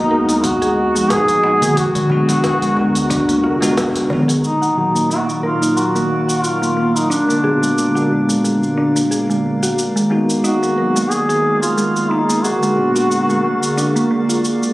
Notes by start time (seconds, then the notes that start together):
Already playing: G#3 D#4 F#4 A#4
0.09 D2 A#3 B3 D#4 A#4
0.13 F#4
0.29 G#3, open hi-hat, shaker
0.44 F#4, kick, open hi-hat, shaker
0.62 G#4, open hi-hat, shaker
0.95 A#1 G#3, shaker
1.10 G#3 G#4, kick, snare, open hi-hat, shaker
1.28 open hi-hat, shaker
1.43 D#4, darbuka tek
1.61 A#3, open hi-hat, darbuka ka, darbuka dum, shaker
1.76 A#1 D3 F#4 G#4 A#4, kick, open hi-hat, darbuka ka, shaker
1.95 G#3, open hi-hat, darbuka tek, darbuka dum, shaker
2.10 G#3 B3 D4 F#4, darbuka tek, darbuka dum
2.29 F#4, open hi-hat, darbuka tek, shaker
2.44 kick, snare, open hi-hat, shaker
2.62 G#3, open hi-hat, shaker
2.75 D2 G#3 B3 D4, darbuka ka
2.79 F#4
2.95 open hi-hat, shaker
3.10 D4, kick, open hi-hat, darbuka ka, shaker
3.29 A#3, open hi-hat, shaker
3.44 F1 F4, darbuka ka
3.61 G#3 B3 D4 F#4, snare, open hi-hat, shaker
3.77 kick, snare, open hi-hat, shaker
3.95 G#1, open hi-hat, shaker
4.10 A#1 B3, darbuka ka, darbuka dum
4.28 G#4, open hi-hat, shaker
4.43 A#2 D#3 F#3 A#3 D#4 A#4 D5, shaker
4.62 F#5, shaker
4.76 A#2 F#3 A#3 D#4 F#4
4.95 A#3, shaker
5.10 A#3 F#4, shaker
5.29 shaker
5.42 A#2 F#3 A#3 D#4 F4 A#4
5.46 A#4
5.62 D#4, shaker
5.77 F#4 A#5, shaker
5.95 A#3, shaker
6.29 F#5, shaker
6.43 F4, shaker
6.62 A#3, shaker
6.77 A#3
6.95 D#4, shaker
7.10 D3 G#3 D4, shaker
7.29 A#3, shaker
7.43 A#2 G#3 B3 D4 F#4 G#4
7.62 G#3, shaker
7.78 shaker
7.95 F#4, shaker
8.09 A#2 G#3 B3 D4
8.14 F#4
8.29 G#3, shaker
8.44 G#3, shaker
8.63 shaker
8.77 D4
8.96 A#3, shaker
9.11 G#4, shaker
9.30 G#3, shaker
9.63 F#4, shaker
9.77 D#3 G#4 A#4, shaker
9.96 G#3, shaker
10.10 G#3 A#3 B3 D#4 F#4
10.30 shaker
10.44 D#4 F#4, shaker
10.63 A#3, shaker
10.75 A#3 B3 D#4 A#4
10.79 F#3
10.96 G#3, shaker
11.11 G#4, shaker
11.29 G#4, shaker
11.62 G#3 F4, shaker
11.77 G#3, shaker
11.96 shaker
12.10 D#4
12.29 A#3, shaker
12.44 D3 F#4 G#4, shaker
12.63 G#3, shaker
12.76 A#2 G#3 B3 D4 F#4
12.96 F#4, shaker
13.11 shaker
13.29 G#3, shaker
13.44 G#3
13.63 shaker
13.77 D4, shaker
13.96 A#3, shaker
14.11 A#3
14.29 F4, shaker
14.45 shaker
14.63 shaker